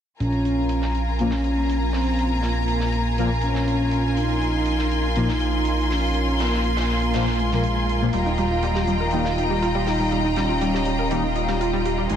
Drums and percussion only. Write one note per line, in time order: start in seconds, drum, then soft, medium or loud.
0.20 closed hi-hat medium
0.32 closed hi-hat soft
0.45 closed hi-hat medium
0.69 closed hi-hat medium
0.82 snare soft
0.95 closed hi-hat medium
1.19 closed hi-hat medium
1.31 snare soft
1.44 closed hi-hat medium
1.70 closed hi-hat medium
1.93 snare medium
1.93 open hi-hat medium
2.19 closed hi-hat medium
2.43 snare soft
2.43 closed hi-hat medium
2.68 closed hi-hat medium
2.80 snare soft
2.92 closed hi-hat medium
3.18 closed hi-hat medium
3.42 closed hi-hat medium
3.55 snare soft
3.68 closed hi-hat medium
3.91 closed hi-hat medium
4.17 closed hi-hat medium
4.29 closed hi-hat soft
4.42 closed hi-hat medium
4.66 closed hi-hat medium
4.79 snare soft
4.91 closed hi-hat medium
5.16 closed hi-hat medium
5.29 snare soft
5.40 closed hi-hat medium
5.65 closed hi-hat medium
5.91 snare soft
5.91 open hi-hat medium
6.14 closed hi-hat medium
6.39 snare medium
6.39 closed hi-hat medium
6.52 snare soft
6.65 closed hi-hat medium
6.77 snare medium
6.77 closed hi-hat medium
6.89 snare soft
7.02 closed hi-hat medium
7.14 snare loud
7.14 closed hi-hat medium
7.26 snare soft
7.39 closed hi-hat medium
7.52 snare soft
7.64 closed hi-hat medium
7.89 closed hi-hat medium
8.13 closed hi-hat medium
8.26 closed hi-hat soft
8.38 closed hi-hat medium
8.63 closed hi-hat medium
8.75 snare soft
8.87 closed hi-hat medium
9.11 closed hi-hat medium
9.25 snare soft
9.38 closed hi-hat medium
9.63 closed hi-hat medium
9.87 snare soft
9.87 open hi-hat medium
10.12 closed hi-hat medium
10.36 snare soft
10.36 closed hi-hat medium
10.61 closed hi-hat medium
10.75 snare soft
10.85 closed hi-hat medium
11.11 closed hi-hat medium
11.36 closed hi-hat medium
11.48 snare soft
11.61 closed hi-hat medium
11.86 closed hi-hat medium
12.10 closed hi-hat medium